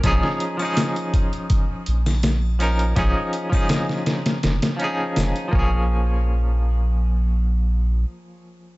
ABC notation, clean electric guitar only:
X:1
M:4/4
L:1/16
Q:1/4=82
K:Bbm
V:1 name="Clean electric guitar"
[F,DEA]3 [F,DEA]8- [F,DEA]3 [F,DEB]2 | [F,DEA]3 [F,DEA]6- [F,DEA] [F,DEA]4 [F,B,DA]2- | [F,B,DA]16 |]